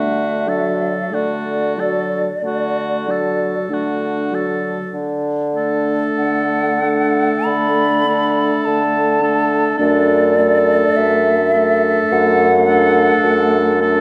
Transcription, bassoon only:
0.00 0.97 D3 soft
1.13 2.29 D3 soft
2.44 3.55 D3 soft
3.70 4.79 D3 soft
4.94 6.03 D3 medium
6.19 7.32 D3 medium
7.46 8.52 D3 medium
8.67 9.67 D3 medium
9.80 10.84 F#2 medium
10.97 11.98 F#2 medium
12.12 13.11 F#2 medium
13.24 14.01 F#2 medium

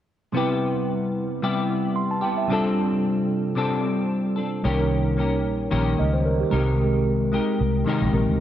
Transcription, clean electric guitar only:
0.32 1.41 C3 medium
0.32 1.42 G3 medium
0.32 1.42 B3 medium
0.32 1.43 E4 medium
0.37 1.43 G4 medium
1.42 2.23 C3 medium
1.42 2.49 G3 medium
1.42 2.23 B3 medium
1.42 2.22 E4 medium
1.42 2.21 G4 medium
2.21 2.50 B3 soft
2.21 2.50 E4 soft
2.21 2.49 G4 soft
2.48 3.54 C3 medium
2.48 3.56 G3 medium
2.48 3.56 C4 medium
2.48 3.56 D4 medium
2.53 3.57 A4 medium
3.55 4.37 C3 medium
3.55 4.39 G3 medium
3.55 4.37 C4 medium
3.55 4.36 D4 medium
3.55 4.35 A4 medium
4.36 4.64 C4 soft
4.36 4.65 D4 soft
4.36 4.64 A4 soft
4.64 5.21 D#3 medium
4.64 5.16 A#3 medium
4.64 5.17 C#4 medium
4.64 5.19 G4 medium
4.64 5.19 A#4 medium
5.17 5.71 A#3 medium
5.17 5.70 C#4 soft
5.17 5.71 G4 medium
5.17 5.72 A#4 medium
5.71 6.53 D#3 medium
5.71 6.53 A#3 medium
5.71 6.52 C#4 medium
5.71 6.52 G4 medium
5.71 6.51 A#4 medium
6.51 7.34 C3 soft
6.51 7.34 D#3 medium
6.51 7.30 G#3 medium
6.51 7.32 D#4 medium
6.51 7.33 G4 medium
6.51 7.33 A#4 medium
7.32 7.85 G#3 soft
7.32 7.86 D#4 medium
7.32 7.88 G4 medium
7.32 7.88 A#4 medium
7.85 8.40 C3 medium
7.85 8.40 D#3 medium
7.85 8.40 G#3 medium
7.85 8.40 D#4 medium
7.85 8.40 G4 medium
7.89 8.40 A#4 medium

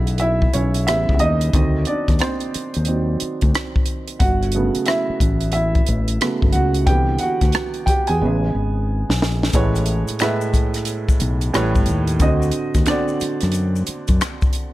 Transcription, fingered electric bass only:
0.00 0.47 B1 medium
0.55 0.88 B1 medium
0.88 1.07 A1 medium
1.09 1.20 C#2 medium
1.22 1.51 D#2 medium
1.54 1.84 D2 loud
2.09 2.19 D#2 medium
2.55 muted fingered electric bass stroke soft
2.77 3.16 D#2 medium
3.22 muted fingered electric bass stroke soft
3.43 3.53 D2 medium
4.21 4.69 G1 loud
4.76 muted fingered electric bass stroke soft
5.10 muted fingered electric bass stroke soft
5.21 5.80 A1 medium
5.89 6.18 A1 medium
6.43 6.53 G1 medium
6.55 6.87 C#2 medium
6.87 7.17 C2 medium
7.42 7.53 D2 medium
7.87 muted fingered electric bass stroke soft
8.09 8.23 E2 medium
8.21 8.51 A1 medium
8.55 9.03 G#1 medium
9.09 9.22 B1 medium
9.22 9.51 A#1 medium
9.54 10.02 A1 medium
10.10 muted fingered electric bass stroke soft
11.22 11.51 B1 medium
11.55 11.73 A1 medium
11.76 11.87 G1 medium
11.89 12.21 D#2 medium
12.21 12.50 D2 loud
12.76 12.86 D#2 medium
13.22 muted fingered electric bass stroke soft
13.43 13.83 F#2 medium
13.88 muted fingered electric bass stroke soft
14.09 14.20 F#2 medium

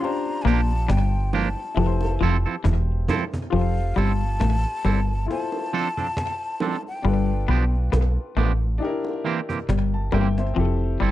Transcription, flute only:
0.04 0.43 A#5 medium
0.42 0.50 G#5 medium
0.49 0.93 A5 medium
0.91 1.38 G5 medium
1.36 2.67 A5 medium
3.54 4.00 F5 medium
3.98 5.30 A5 loud
5.30 6.82 A5 loud
6.88 7.71 G5 medium

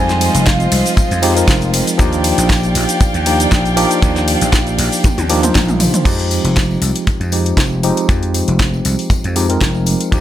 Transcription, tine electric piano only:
0.00 1.19 F3 medium
0.00 1.20 G3 medium
0.00 1.20 G#3 medium
0.00 1.20 C4 medium
0.00 1.20 D#4 medium
1.22 1.33 F3 loud
1.22 1.33 G#3 medium
1.22 1.33 C4 medium
1.22 1.33 D#4 medium
1.22 1.33 G4 loud
1.35 1.95 F3 medium
1.35 1.96 G#3 medium
1.35 1.96 C4 medium
1.35 1.96 D#4 medium
1.35 1.96 A#4 medium
1.98 3.23 F3 loud
1.98 3.23 A#3 medium
1.98 3.23 D4 medium
1.98 3.23 D#4 medium
1.98 3.24 G4 loud
3.26 3.74 F3 medium
3.26 3.74 A#3 medium
3.26 3.74 D4 medium
3.26 3.74 D#4 medium
3.26 3.74 G4 medium
3.76 3.99 F3 loud
3.76 3.99 A#3 loud
3.76 3.99 D4 loud
3.76 3.99 D#4 loud
3.76 3.99 G4 loud
4.01 5.26 F3 medium
4.01 5.26 D4 medium
4.01 5.27 D#4 medium
4.01 5.27 G4 medium
5.29 5.40 F3 loud
5.29 5.40 A#3 medium
5.29 5.40 D4 loud
5.29 5.40 D#4 medium
5.29 5.40 G4 loud
5.42 6.02 F3 medium
5.42 6.03 A#3 medium
5.42 6.03 D4 medium
5.42 6.03 D#4 medium
5.42 6.03 C5 medium
6.05 7.29 F3 medium
6.05 7.30 G#3 medium
6.05 7.30 C4 medium
6.05 7.30 D#4 medium
6.05 7.30 G4 loud
7.32 7.80 F3 medium
7.32 7.81 G#3 medium
7.32 7.81 C4 medium
7.32 7.81 D#4 medium
7.32 7.81 G4 medium
7.83 8.06 F3 loud
7.83 8.06 G#3 medium
7.83 8.06 C4 medium
7.83 8.06 D#4 medium
7.83 8.06 G4 loud
8.08 9.33 F3 medium
8.08 9.33 G#3 medium
9.35 9.46 F3 loud
9.35 9.46 G#3 medium
9.35 9.46 C4 medium
9.35 9.46 D#4 medium
9.35 9.47 G4 loud
9.49 10.09 F3 medium
9.49 10.09 G#3 medium
9.49 10.09 C4 medium
9.49 10.10 D#4 medium
9.49 10.10 A#4 medium
10.11 10.21 F3 loud
10.11 10.21 A#3 medium
10.11 10.21 D4 medium
10.11 10.21 D#4 medium
10.11 10.21 G4 loud

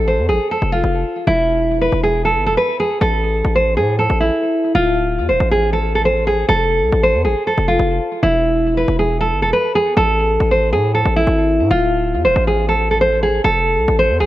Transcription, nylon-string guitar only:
0.08 0.26 C5 medium
0.29 0.47 G#4 medium
0.51 0.70 A4 medium
0.72 1.24 F4 medium
1.27 1.78 E4 loud
1.81 2.00 B4 medium
2.03 2.22 G#4 medium
2.25 2.43 A4 medium
2.46 2.56 A4 medium
2.57 2.76 B4 medium
2.80 2.98 G#4 medium
3.01 3.52 A4 loud
3.56 3.74 C5 medium
3.77 3.95 G#4 medium
3.99 4.17 A4 medium
4.20 4.72 E4 medium
4.75 5.26 F4 loud
5.29 5.47 C5 medium
5.51 5.70 G#4 medium
5.73 5.91 A4 medium
5.95 6.04 A4 medium
6.05 6.24 C5 medium
6.27 6.45 G#4 medium
6.49 7.00 A4 loud
7.03 7.22 C5 medium
7.25 7.43 G#4 medium
7.47 7.65 A4 medium
7.68 8.19 F4 medium
8.23 8.74 E4 loud
8.77 8.96 B4 medium
8.99 9.17 G#4 medium
9.21 9.39 A4 medium
9.42 9.51 A4 medium
9.53 9.71 B4 medium
9.75 9.93 G#4 medium
9.97 10.48 A4 loud
10.51 10.70 C5 medium
10.73 10.91 G#4 medium
10.95 11.13 A4 medium
11.16 11.67 E4 medium
11.71 12.22 F4 loud
12.25 12.43 C5 medium
12.47 12.65 G#4 medium
12.69 12.87 A4 medium
12.91 13.00 A4 medium
13.01 13.19 C5 medium
13.23 13.41 G#4 medium
13.44 13.96 A4 loud
13.99 14.17 C5 medium
14.20 14.26 G#4 medium

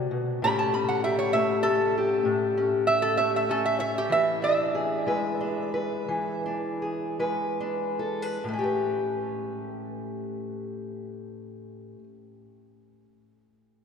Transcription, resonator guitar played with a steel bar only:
0.44 0.57 B5 loud
0.59 0.72 A5 medium
0.74 0.88 B5 medium
0.89 1.03 F#5 medium
1.04 1.18 E5 medium
1.19 1.33 C#5 medium
1.33 1.63 E5 medium
1.63 2.22 A4 loud
2.87 3.01 E5 loud
3.02 3.16 A4 medium
3.17 3.32 E5 medium
3.36 3.49 E5 medium
3.51 3.64 A4 medium
3.66 3.79 E5 medium
3.80 3.94 E5 loud
3.98 4.11 G4 medium
4.12 4.42 E5 medium
4.44 6.43 E5 medium

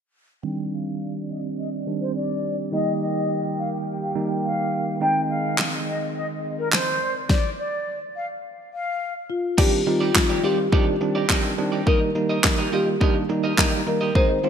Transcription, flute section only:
0.44 2.70 C4 medium
0.44 4.97 G4 medium
0.44 2.70 D5 medium
2.73 4.99 A#4 medium
2.73 4.99 G5 medium
5.01 7.27 C4 medium
5.01 6.99 G#4 medium
5.01 6.99 D#5 medium
7.01 7.29 A#4 medium
7.01 7.29 D5 medium

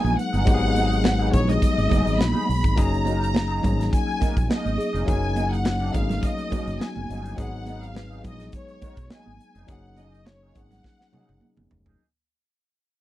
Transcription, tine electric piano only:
0.00 0.45 F#3 loud
0.00 0.46 G#3 medium
0.00 0.47 B3 medium
0.00 0.47 D#4 medium
0.00 0.54 G#4 loud
0.00 2.79 B4 medium
0.45 1.10 F#3 loud
0.45 1.10 G#3 medium
0.45 1.11 B3 medium
0.45 1.11 D#4 medium
0.45 0.54 G4 medium
0.54 1.15 G#4 loud
1.31 1.76 F#3 medium
1.31 1.76 G#3 medium
1.31 1.76 B3 medium
1.31 1.77 D#4 medium
1.31 1.77 G#4 medium
1.89 2.54 F#3 medium
1.89 2.55 G#3 medium
1.89 2.55 B3 medium
1.89 2.55 D#4 medium
1.89 2.55 G#4 medium
2.76 3.41 F#3 medium
2.76 3.41 A#3 medium
2.76 3.41 C#4 medium
2.76 3.42 D#4 medium
2.76 3.42 G#4 loud
3.63 4.48 F#3 medium
3.63 4.49 A#3 medium
3.63 4.49 C#4 medium
3.63 4.49 D#4 medium
3.63 4.50 G#4 medium
5.06 5.71 F#3 loud
5.06 5.72 A#3 medium
5.06 5.72 C#4 medium
5.06 5.72 D#4 medium
5.06 5.73 G#4 loud
5.93 6.37 F#3 medium
5.93 6.01 A3 soft
5.93 6.38 C#4 medium
5.93 6.38 D#4 medium
5.93 6.39 G#4 medium
6.00 6.41 A#3 medium
6.50 7.15 F#3 medium
6.50 7.16 A#3 medium
6.50 7.16 C#4 medium
6.50 7.16 D#4 medium
6.50 7.17 F#4 medium
7.37 8.02 F#3 loud
7.37 8.02 G#3 loud
7.37 8.03 B3 medium
7.37 8.03 D#4 medium
7.37 8.03 G#4 loud
8.23 9.09 F#3 medium
8.23 9.10 G#3 medium
8.23 9.10 B3 medium
8.23 9.10 D#4 medium
8.23 9.11 G#4 medium
9.67 10.32 F#3 medium
9.67 10.33 A#3 medium
9.67 10.33 C#4 medium
9.67 10.33 D#4 medium
9.67 10.34 G#4 loud
10.54 10.99 F#3 medium
10.54 10.99 A#3 medium
10.54 10.99 C#4 medium
10.54 11.00 D#4 medium
10.54 11.00 G#4 medium
11.12 11.77 F#3 medium
11.12 11.77 A#3 medium
11.12 11.78 C#4 medium
11.12 11.78 D#4 medium
11.12 11.78 G#4 medium

